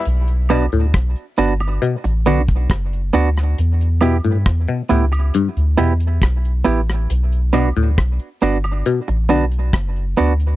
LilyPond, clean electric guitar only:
\new Staff \with { instrumentName = "Clean electric guitar" } { \time 4/4 \key b \minor \tempo 4 = 68 r8 <b d' fis'>8 r8 <b d' fis'>8 r8 <b d' fis'>8 r8 <b d' fis'>8 | r8 <b e' g'>8 r8 <b e' g'>8 r8 <b e' g'>8 r8 <b e' g'>8 | r8 <b d' fis'>8 r8 <b d' fis'>8 r8 <b d' fis'>8 r8 <b d' fis'>8 | }